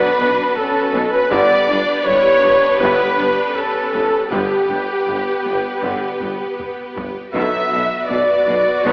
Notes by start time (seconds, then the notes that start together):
Already playing: D3 F#3 B3 D4 F#4 B4
0.18 B1 B2 B3
0.55 C#4 A4, taiko low
0.92 B1 B2 B3, taiko low
1.12 B4
1.30 G1 G2 D3 G3 B3 G4 B4 D5, taiko
1.68 G1 G2 B3 D4
2.04 G1 G2 G3 E4 C#5
2.43 G1 G2 B3 D4
2.79 G1 G2 D3 G3 B3 E4 B4, taiko
3.17 G1 G2 B3 D4
3.55 C#4 A4, taiko low
3.92 G1 G2 B3, taiko low
4.28 G1 G2 D3 G3 B3 G4 B4, taiko
4.69 G1 G2 B3
5.07 G1 G2 G3
5.45 G1 G2 B3
5.82 G1 G2 D3 G3 B3, taiko
6.21 G1 G2 B3, taiko low-mid
6.60 taiko low-mid
6.96 G1 G2 B3, taiko low
7.31 B1 B2 D3 F#3 B3 F#4 B4 E5
7.36 taiko
7.72 B1 B2 B3
8.08 B1 B2 F#3 D5
8.47 B1 B2 B3
8.83 B1 B2 D3 F#3 B3 F#4 C#5, taiko